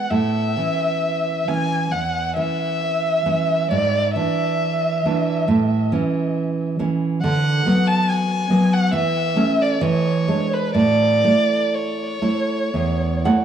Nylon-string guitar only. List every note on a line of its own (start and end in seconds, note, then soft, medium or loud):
0.11 0.55 A2 soft
0.57 1.43 E3 soft
0.57 1.44 C#4 soft
1.48 1.88 E3 soft
1.48 1.89 C#4 soft
1.92 2.35 E2 soft
2.36 3.22 E3 soft
2.36 3.22 C#4 soft
3.26 3.67 E3 soft
3.26 3.67 C#4 soft
3.71 4.15 G#2 medium
4.16 5.01 E3 soft
4.16 5.01 D4 soft
5.05 5.44 E3 soft
5.05 5.44 D4 soft
5.48 5.90 A2 medium
5.92 6.75 E3 soft
5.92 6.76 C#4 soft
6.79 7.19 E3 soft
6.79 7.19 C#4 soft
7.24 7.64 D3 medium
7.66 8.46 F#3 soft
7.66 8.46 B3 medium
8.50 8.89 F#3 soft
8.50 8.89 B3 soft
8.93 9.35 E3 medium
9.36 9.77 A3 soft
9.36 9.78 C#4 medium
9.81 10.26 E3 medium
10.28 10.72 G#3 soft
10.28 10.72 D4 soft
10.75 11.23 A2 medium
11.24 12.19 A3 soft
11.24 12.20 E4 soft
12.22 12.70 A3 soft
12.22 12.70 E4 soft
12.74 13.24 E2 soft
13.25 13.45 A3 soft
13.25 13.45 E4 soft
13.25 13.45 F#5 medium